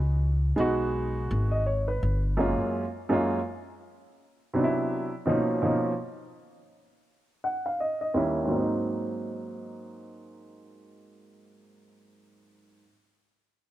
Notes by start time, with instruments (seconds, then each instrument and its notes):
Already playing: upright bass C#2
0.56 upright bass B1, upright piano G#3 B3 D#4 F#4
1.31 upright bass G#1
1.51 upright piano D#5
1.66 upright piano C#5
1.88 upright piano B4
2.03 upright bass G1
2.37 upright piano F#2 G#3 A#3 C#4 F4
2.60 muted upright bass stroke
3.09 upright piano F#2 G#3 A#3 C#4 F4
4.54 upright piano C3 F#3 B3 D4 D#4
4.64 upright piano E4
5.26 upright piano B2 F3 A#3 C#4 D#4
5.62 upright piano B2 F3 A#3 C#4 D#4
7.44 upright piano F#5
7.66 upright piano F5
7.80 upright piano D#5
8.01 upright piano D#5
8.14 upright piano D#2 G3 A#3 C#4 E4
8.44 upright piano G#2 F#3
8.52 upright piano A#3 C4
8.59 upright piano D#4